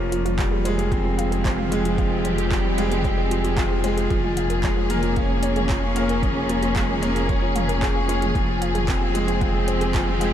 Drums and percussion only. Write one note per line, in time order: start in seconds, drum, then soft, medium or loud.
0.12 closed hi-hat medium
0.26 closed hi-hat soft
0.26 mid tom medium
0.38 kick loud
0.38 clap medium
0.38 closed hi-hat soft
0.65 closed hi-hat medium
0.79 closed hi-hat soft
0.92 kick loud
0.92 closed hi-hat soft
0.92 mid tom medium
1.19 closed hi-hat medium
1.32 closed hi-hat soft
1.45 kick loud
1.45 clap medium
1.45 closed hi-hat soft
1.59 mid tom medium
1.72 closed hi-hat medium
1.85 closed hi-hat soft
1.98 kick loud
1.98 closed hi-hat soft
2.25 closed hi-hat medium
2.25 mid tom medium
2.38 closed hi-hat soft
2.51 kick loud
2.51 clap medium
2.51 closed hi-hat soft
2.78 closed hi-hat medium
2.92 closed hi-hat soft
2.92 mid tom medium
3.04 kick medium
3.04 closed hi-hat soft
3.31 closed hi-hat medium
3.45 closed hi-hat soft
3.57 kick loud
3.57 clap medium
3.57 closed hi-hat soft
3.57 mid tom medium
3.84 closed hi-hat medium
3.98 closed hi-hat soft
4.10 kick loud
4.10 closed hi-hat soft
4.24 mid tom medium
4.37 closed hi-hat medium
4.50 closed hi-hat soft
4.63 kick loud
4.63 clap medium
4.63 closed hi-hat soft
4.90 closed hi-hat medium
4.90 mid tom medium
5.03 closed hi-hat soft
5.16 kick loud
5.16 closed hi-hat soft
5.43 closed hi-hat medium
5.56 closed hi-hat soft
5.56 mid tom medium
5.69 kick loud
5.69 clap loud
5.69 closed hi-hat soft
5.96 closed hi-hat medium
6.09 closed hi-hat soft
6.23 kick loud
6.23 closed hi-hat soft
6.23 mid tom medium
6.49 closed hi-hat medium
6.63 closed hi-hat soft
6.76 kick loud
6.76 clap medium
6.76 closed hi-hat soft
6.89 mid tom medium
7.03 closed hi-hat medium
7.16 closed hi-hat soft
7.29 kick loud
7.29 closed hi-hat soft
7.56 closed hi-hat medium
7.56 mid tom medium
7.69 closed hi-hat soft
7.82 kick loud
7.82 clap medium
7.82 closed hi-hat soft
8.09 closed hi-hat medium
8.22 closed hi-hat soft
8.22 mid tom medium
8.35 kick loud
8.35 closed hi-hat soft
8.62 closed hi-hat medium
8.75 closed hi-hat soft
8.75 mid tom medium
8.88 kick loud
8.88 clap loud
8.88 closed hi-hat soft
9.15 closed hi-hat medium
9.28 closed hi-hat soft
9.41 kick loud
9.41 closed hi-hat soft
9.41 mid tom medium
9.68 closed hi-hat medium
9.81 closed hi-hat soft
9.94 kick loud
9.94 clap loud
9.94 closed hi-hat soft
10.08 mid tom medium
10.21 closed hi-hat medium